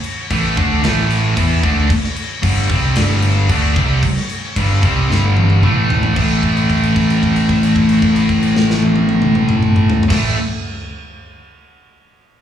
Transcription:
0.03 crash
0.30 A1 A2 E3 A3, kick, crash
0.56 D2 D3 A3 D4, kick, crash
0.83 A1 A2 E3 A3, snare, crash
1.10 crash
1.36 E2 E3 B3 E4, kick, crash
1.62 D2 D3 A3 D4, kick, crash
1.90 muted distorted electric guitar stroke, muted picked electric bass stroke, kick, crash
2.04 snare
2.16 crash
2.42 G1 G2 D3 G3, kick, crash
2.69 C2 C3 G3 C4, kick, crash
2.96 G1 G2 D3 G3, snare, crash
3.22 crash
3.49 D2 D3 A3 D4, kick, crash
3.76 C2 C3 G3 C4, kick, crash
4.03 muted picked electric bass stroke, muted distorted electric guitar stroke, kick, crash
4.17 snare
4.29 crash
4.56 G1 G2 D3 G3, kick, crash
4.82 C2 C3 G3 C4, kick, crash
5.09 G1 G2 D3 G3, snare
5.37 high tom
5.50 high tom
5.62 A1 A2 E3 A3, mid tom
5.90 floor tom
6.03 floor tom
6.14 A1 A2 E3 A3, kick, crash
6.43 kick, crash
6.57 crash
6.70 kick, crash
6.83 crash
6.96 kick, crash
7.10 crash
7.23 kick, crash
7.36 crash
7.49 kick, crash
7.63 crash
7.76 kick, crash
7.89 crash
8.02 kick, crash
8.16 crash
8.29 kick, crash
8.43 crash
8.56 snare
8.70 snare
8.82 high tom
8.96 high tom
9.09 high tom
9.22 mid tom
9.35 mid tom
9.49 mid tom
9.63 mid tom
9.76 mid tom
9.90 floor tom
10.03 floor tom
10.09 A1 A2 E3, kick, snare, crash
10.13 A3

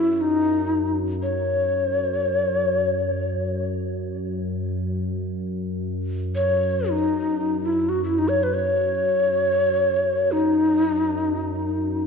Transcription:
Already playing: F#2 E4
0.13 E4
0.21 D#4
1.23 C#5
6.35 C#5
6.90 D#4
7.66 E4
7.89 F#4
8.04 E4
8.18 D#4
8.28 C#5
8.43 B4
8.54 C#5
10.32 D#4
11.96 F#2

